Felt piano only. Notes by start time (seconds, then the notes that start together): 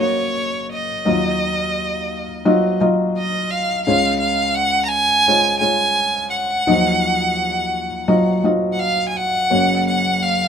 Already playing: F#1 F#2
0.00 A#3 F#4 C#5
1.05 D#2 D#3 F#3 F4 D#5
2.45 F#3 F4 D#5
2.81 F#3 F4 D#5
3.87 C#2 C#3 G#3 F4 C#5
5.28 G#3 F4 C#5
5.61 G#3 F4 C#5
6.67 D#2 D#3 F3 F#3 D#5
8.08 F#3 F4 D#5
8.44 F#3 F4 D#5
9.50 F#1 F#2 A#3 F#4 C#5